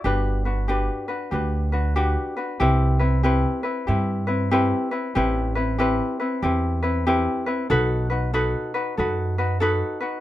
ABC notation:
X:1
M:4/4
L:1/8
Q:"Swing" 1/4=94
K:G
V:1 name="Ukulele"
[DFGB] [DFB] [DFGB] [DFB] [DFGB] [DFB] [DFGB] [DFB] | [K:C] [CEGB] [CEB] [CEGB] [CEB] [CEGB] [CEB] [CEGB] [CEB] | [CEGB] [CEB] [CEGB] [CEB] [CEGB] [CEB] [CEGB] [CEB] | [^D^FAB] [DFB] [DFAB] [DFB] [DFAB] [DFB] [DFAB] [DFB] |]
V:2 name="Upright bass" clef=bass
G,,,4 D,,4 | [K:C] C,,4 G,,4 | A,,,4 E,,4 | B,,,4 ^F,,4 |]